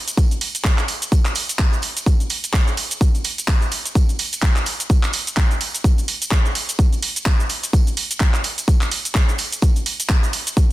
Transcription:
0.08 closed hi-hat, tambourine, cabasa
0.17 kick, closed hi-hat, tambourine, cabasa
0.31 closed hi-hat, tambourine, cabasa
0.41 open hi-hat, tambourine
0.55 closed hi-hat, tambourine, cabasa
0.64 kick, clap, closed hi-hat, cabasa
0.78 clap, closed hi-hat, tambourine, cabasa
0.88 open hi-hat, tambourine
1.02 closed hi-hat, tambourine, cabasa
1.12 kick, closed hi-hat, tambourine, cabasa
1.25 clap, closed hi-hat, tambourine, cabasa
1.35 open hi-hat, tambourine
1.49 closed hi-hat, tambourine, cabasa
1.59 kick, clap, closed hi-hat, cabasa
1.72 closed hi-hat, tambourine, cabasa
1.82 open hi-hat, tambourine
1.97 closed hi-hat, tambourine, cabasa
2.06 kick, closed hi-hat, tambourine, cabasa
2.20 closed hi-hat, tambourine, cabasa
2.30 open hi-hat, tambourine
2.43 closed hi-hat, tambourine, cabasa
2.53 kick, clap, closed hi-hat, tambourine, cabasa
2.67 closed hi-hat, tambourine, cabasa
2.77 open hi-hat, tambourine
2.91 closed hi-hat, tambourine, cabasa
3.01 kick, closed hi-hat, tambourine, cabasa
3.15 closed hi-hat, tambourine, cabasa
3.24 open hi-hat, tambourine
3.38 closed hi-hat, tambourine, cabasa
3.48 kick, clap, closed hi-hat, cabasa
3.62 closed hi-hat, tambourine, cabasa
3.71 open hi-hat, tambourine
3.85 closed hi-hat, tambourine, cabasa
3.95 kick, closed hi-hat, tambourine, cabasa
4.09 closed hi-hat, tambourine, cabasa
4.19 open hi-hat, tambourine
4.33 closed hi-hat, tambourine, cabasa
4.42 kick, clap, closed hi-hat, cabasa
4.56 clap, closed hi-hat, tambourine, cabasa
4.66 open hi-hat, tambourine
4.80 closed hi-hat, tambourine, cabasa
4.89 kick, closed hi-hat, tambourine, cabasa
5.03 clap, closed hi-hat, tambourine, cabasa
5.13 open hi-hat, tambourine
5.27 closed hi-hat, tambourine, cabasa
5.37 kick, clap, closed hi-hat, cabasa
5.51 closed hi-hat, tambourine, cabasa
5.61 open hi-hat, tambourine
5.74 closed hi-hat, tambourine, cabasa
5.84 kick, closed hi-hat, tambourine, cabasa
5.98 closed hi-hat, tambourine, cabasa
6.08 open hi-hat, tambourine
6.22 closed hi-hat, tambourine, cabasa
6.31 kick, clap, closed hi-hat, cabasa
6.45 closed hi-hat, tambourine, cabasa
6.55 open hi-hat, tambourine
6.68 closed hi-hat, tambourine, cabasa
6.79 kick, closed hi-hat, tambourine, cabasa
6.93 closed hi-hat, tambourine, cabasa
7.03 open hi-hat, tambourine
7.16 closed hi-hat, tambourine, cabasa
7.26 kick, clap, closed hi-hat, tambourine, cabasa
7.40 closed hi-hat, tambourine, cabasa
7.49 open hi-hat, tambourine
7.63 closed hi-hat, tambourine, cabasa
7.73 kick, closed hi-hat, tambourine, cabasa
7.87 closed hi-hat, tambourine, cabasa
7.97 open hi-hat, tambourine
8.11 closed hi-hat, tambourine, cabasa
8.20 kick, clap, closed hi-hat, tambourine, cabasa
8.33 clap, closed hi-hat, tambourine, cabasa
8.44 open hi-hat, tambourine
8.58 closed hi-hat, tambourine, cabasa
8.68 kick, closed hi-hat, tambourine, cabasa
8.81 clap, closed hi-hat, tambourine, cabasa
8.91 open hi-hat, tambourine
9.05 closed hi-hat, tambourine, cabasa
9.15 kick, clap, closed hi-hat, cabasa
9.28 closed hi-hat, tambourine, cabasa
9.38 open hi-hat, tambourine
9.52 closed hi-hat, tambourine, cabasa
9.62 kick, closed hi-hat, tambourine, cabasa
9.76 closed hi-hat, tambourine, cabasa
9.86 open hi-hat, tambourine
10.00 closed hi-hat, tambourine, cabasa
10.09 kick, clap, closed hi-hat, cabasa
10.23 closed hi-hat, tambourine, cabasa
10.33 open hi-hat, tambourine
10.47 closed hi-hat, tambourine, cabasa
10.57 kick, closed hi-hat, tambourine, cabasa

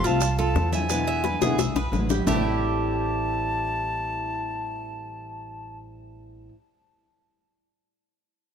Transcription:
0.03 C2 F3 A3 C4 F4 A5, maracas
0.21 muted steel-string acoustic guitar stroke, high bongo, high conga, maracas
0.38 F4 A4 A5, high conga, maracas
0.55 E2 A3 C4 F4, high bongo, low bongo, high conga, maracas
0.72 E4 E5 G#5, high conga, maracas
0.89 B2 D3 G#3 B3 E4 B4, high bongo, high conga, maracas
1.07 E5, high bongo, high conga, maracas
1.24 D3 G#3 B3 B4, high bongo, high conga, maracas
1.41 B1 D3 G#3 B3 E4 G#4, high bongo, high conga, low conga, maracas
1.59 E5, muted steel-string acoustic guitar stroke, high bongo, high conga, low conga, maracas
1.75 B1 B4, low bongo, high conga, maracas
1.92 A1 D3 G#3 B3 E4, low bongo, high conga, maracas
2.10 G4, low bongo, high conga, maracas
2.26 A1 A2 E3 G3 A3 C4 E4 G4 A5, low bongo, low conga, maracas

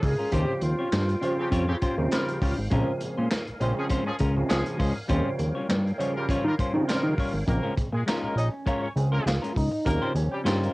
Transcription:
Already playing: F3 C#4 G#4 A#4 F5 G#5
0.02 C#2 G#4, muted clean electric guitar stroke, kick, open hi-hat
0.18 G#3 C#4 F4 A#4
0.31 D#2 C#3 F3 G3 A#3 C#4 F4 G4 C5 F5 G5, kick, closed hi-hat
0.40 C4
0.61 D#2 F4, muted clean electric guitar stroke, closed hi-hat
0.79 C#4 F4 G4 C#5
0.91 G2, muted clean electric guitar stroke, snare, clap, closed hi-hat
1.09 closed hi-hat
1.21 C#3 F3 G3 C4 C#4 F4 G4 C#5, closed hi-hat
1.38 C#3 C4 G4, muted clean electric guitar stroke
1.51 F2 C#4 F4 G4 C#5, kick, closed hi-hat
1.67 C#3 C4 G4, muted clean electric guitar stroke
1.82 C#4 F4 G4 C5, kick, closed hi-hat
1.98 D#2 C#3 F3 G3 C4
2.11 G3 F4 A#4, muted clean electric guitar stroke, snare, clap, closed hi-hat
2.28 closed hi-hat
2.42 C#2 C#4 F4 G4 C#5, kick, open hi-hat
2.58 G#1, muted clean electric guitar stroke
2.70 A#1 C#3 F3 G#3 C4 C#4 F4 A#4 G#5, kick, closed hi-hat
3.01 A#2, muted clean electric guitar stroke, closed hi-hat
3.18 A#2 G#3 C#4 F4 C5
3.30 muted clean electric guitar stroke, snare, clap, closed hi-hat
3.47 A#1, closed hi-hat
3.60 A#1 C#3 F3 G#3 C4 C#4 F4 C5, closed hi-hat
3.77 F3 C#4 G#4, muted clean electric guitar stroke
3.89 G#3 C#4 F4 C5, kick, closed hi-hat
4.06 F3 C#4 G#4, muted clean electric guitar stroke
4.19 C#2 G#3 C#4 F4 A#4, kick, closed hi-hat
4.36 C#3 F3 G#3 C4, muted clean electric guitar stroke
4.49 C#2 F3 C#4 G#4, muted clean electric guitar stroke, snare, clap, closed hi-hat
4.66 closed hi-hat
4.78 C#2 G#3 C#4 F4 C5, kick, open hi-hat
5.08 D#2 C#3 F3 G3 C4 C#4 F4 A#4 C5 C#5 G5, kick, closed hi-hat
5.39 D#2, muted clean electric guitar stroke, closed hi-hat
5.55 G3 C#4 F4 C#5
5.69 G2, muted clean electric guitar stroke, snare, clap, closed hi-hat
5.87 closed hi-hat
5.98 C#3 F3 G3 C#4 F4 C#5, closed hi-hat
6.16 G3 F4 A#4, muted clean electric guitar stroke
6.29 G3 C#4 F4 C#5, kick, closed hi-hat
6.45 D#3 G3 F4 A#4, muted clean electric guitar stroke
6.58 G3 C#4 F4 C5, kick, closed hi-hat
6.74 C#3 D#3 F3 G3 C4, muted clean electric guitar stroke
6.88 G3 F4 A#4, muted clean electric guitar stroke, snare, clap, closed hi-hat
7.03 D#3
7.18 G3 C#4 F4 C#5, kick, open hi-hat
7.33 G#1, muted clean electric guitar stroke
7.47 A#1 C#3 G#3 A#3 C4 A#4, muted clean electric guitar stroke, kick, closed hi-hat
7.63 G#3 C#4 F4 A#4
7.76 A#2, muted clean electric guitar stroke, kick, closed hi-hat
7.92 A#2 G#3 G#4, muted clean electric guitar stroke
8.06 G#3 C#4 D#4 F4 A#4, snare, clap, closed hi-hat
8.23 A#1 A#3 A#4
8.36 A#1 C#4 D#4 D#5, muted clean electric guitar stroke, closed hi-hat
8.52 muted clean electric guitar stroke
8.66 G#3 C#4 F4 A#4 C#5, kick, closed hi-hat
8.82 C#4 C#5
8.96 C#2 C#3 G#3 C4 G#4, muted clean electric guitar stroke, closed hi-hat
9.12 G#3 A#3 C#4 F4 A#4 C5
9.26 C#2 F4, snare, clap, closed hi-hat
9.42 G#3 C#4 F4 A#4, closed hi-hat
9.54 C#2 D#4, muted clean electric guitar stroke, kick, open hi-hat
9.72 muted clean electric guitar stroke
9.85 D#2 C#3 F3 G3 A#3 C4 A#4, muted clean electric guitar stroke, kick, closed hi-hat
10.02 C#4 F4 G4 C5
10.15 D#2 C#4, muted clean electric guitar stroke, closed hi-hat
10.32 G3 G4, muted clean electric guitar stroke
10.44 G2 C#4 D#4 F4 G4 C5, snare, clap, closed hi-hat
10.63 A#3 A#4, closed hi-hat

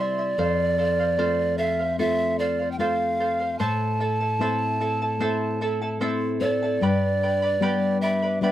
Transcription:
Already playing: C3 G3 C4 E4
0.00 E4 C5 D5 E5 C6
0.18 E4 E5 C6
0.38 F2 A4 C5 F5
0.78 A4 C5 F5
0.99 C5 F5
1.18 A3 C4 F4 A4 C5 F5
1.58 A4 C5 E5 F5
1.79 C5 F5
1.99 A3 C4 F4 A4 C5 E5
2.39 A4 C5 D5 F5
2.59 C5 F5
2.72 G5
2.79 A3 C4 F4 A4 C5 F5
3.20 A4 C5 F5
3.40 C5 F5
3.59 A2 E4 A4 C5 E5 A5
4.00 E4 A4 E5 A5
4.20 E4 A4 A5
4.39 A3 C4 E4 A4 C5 E5 A5
4.80 E4 A4 E5 A5
5.02 E4 A4 A5
5.19 A3 C4 E4 A4 C5 E5 A5
5.61 E4 A4 E5 A5
5.82 E4 A4 A5
6.00 A3 C4 E4 A4 C5 E5 A5
6.41 E4 A4 C5 D5 E5 A5
6.63 E4 A4 A5
6.81 G2 G4 B4 D5 G5 B5
7.23 B4 D5 G5 B5
7.42 B4 D5 B5
7.60 G3 B3 D4 G4 B4 D5 G5 B5
8.01 B4 D5 E5 G5 B5
8.22 B4 D5 B5
8.41 G3 B3 D4 G4 B4 D5 E5 G5 B5

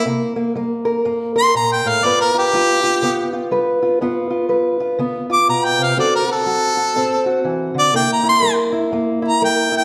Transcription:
0.05 C3 A#3
0.36 A#3
0.55 G3 A#3
0.85 A#4
1.05 G2 A#3
1.36 A#4 C6
1.55 A#2 A#5
1.72 G5
1.85 A2 F5
2.04 G2 B3 F4 B4 D5
2.21 A#4
2.34 F4 G4
2.53 G3 F4
2.84 F4
3.02 D3 B3
3.33 F4
3.51 G3 B4
3.82 F4
4.01 G2 B3 F4 B4
4.30 F4
4.49 G3 B4
4.80 F4
4.99 D3 B3
5.30 F4 D6
5.48 B2 A#5
5.65 G5
5.78 C3
5.83 F5
5.97 D3 C4 F#4 A4 D5
6.15 A#4
6.28 F#4
6.32 A4
6.46 F#3 F#4
6.77 F#4
6.96 A2 C4
7.26 F#4
7.44 E3
7.74 D3
7.79 D5
7.93 C3 A#3 E4 A#4 G5
8.13 A#5
8.23 E4
8.29 C6
8.42 G3 A#4
8.72 E4
8.92 G2 A#3
9.22 E4
9.28 A#5
9.42 G3 A#4 G5
9.72 E4
9.77 G5

